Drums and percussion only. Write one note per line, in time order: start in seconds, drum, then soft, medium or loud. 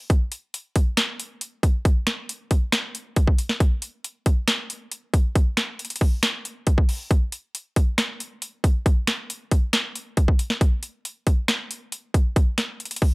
0.10 kick loud
0.10 closed hi-hat medium
0.32 closed hi-hat medium
0.54 closed hi-hat medium
0.76 kick medium
0.76 closed hi-hat medium
0.97 finger snap loud
0.97 snare loud
0.97 closed hi-hat medium
1.20 closed hi-hat medium
1.41 closed hi-hat medium
1.63 kick loud
1.63 closed hi-hat medium
1.85 kick loud
1.85 closed hi-hat medium
2.07 finger snap medium
2.07 snare medium
2.07 closed hi-hat medium
2.29 closed hi-hat medium
2.51 kick medium
2.51 closed hi-hat medium
2.72 finger snap loud
2.72 snare loud
2.72 closed hi-hat medium
2.95 closed hi-hat medium
3.16 kick loud
3.16 closed hi-hat medium
3.27 kick loud
3.38 closed hi-hat medium
3.49 snare medium
3.60 kick loud
3.60 closed hi-hat medium
3.82 closed hi-hat medium
4.04 closed hi-hat medium
4.26 kick medium
4.26 closed hi-hat medium
4.48 finger snap medium
4.48 snare loud
4.48 closed hi-hat medium
4.70 closed hi-hat medium
4.92 closed hi-hat medium
5.14 kick loud
5.14 closed hi-hat medium
5.35 kick loud
5.35 closed hi-hat medium
5.57 finger snap medium
5.57 snare medium
5.57 closed hi-hat medium
5.79 closed hi-hat soft
5.85 closed hi-hat medium
5.90 closed hi-hat medium
5.96 closed hi-hat medium
6.01 kick medium
6.01 open hi-hat medium
6.23 finger snap loud
6.23 snare loud
6.23 closed hi-hat medium
6.45 closed hi-hat medium
6.67 kick medium
6.67 closed hi-hat medium
6.78 kick loud
6.89 open hi-hat medium
7.11 kick loud
7.11 closed hi-hat medium
7.32 closed hi-hat medium
7.55 closed hi-hat medium
7.76 kick medium
7.76 closed hi-hat medium
7.98 finger snap loud
7.98 snare loud
7.98 closed hi-hat medium
8.20 closed hi-hat medium
8.42 closed hi-hat medium
8.64 kick loud
8.64 closed hi-hat medium
8.86 kick loud
8.86 closed hi-hat medium
9.07 finger snap medium
9.07 snare medium
9.07 closed hi-hat medium
9.30 closed hi-hat medium
9.51 kick medium
9.51 closed hi-hat medium
9.73 finger snap medium
9.73 snare loud
9.73 closed hi-hat medium
9.95 closed hi-hat medium
10.17 kick medium
10.17 closed hi-hat medium
10.28 kick loud
10.39 closed hi-hat medium
10.50 snare medium
10.61 kick loud
10.61 closed hi-hat medium
10.83 closed hi-hat medium
11.05 closed hi-hat medium
11.27 kick medium
11.27 closed hi-hat medium
11.48 finger snap medium
11.48 snare loud
11.48 closed hi-hat medium
11.71 closed hi-hat medium
11.92 closed hi-hat medium
12.14 kick loud
12.14 closed hi-hat medium
12.36 kick loud
12.36 closed hi-hat medium
12.58 finger snap medium
12.58 snare medium
12.58 closed hi-hat medium
12.80 closed hi-hat soft
12.85 closed hi-hat medium
12.91 closed hi-hat medium
12.96 closed hi-hat medium
13.02 kick medium
13.02 open hi-hat medium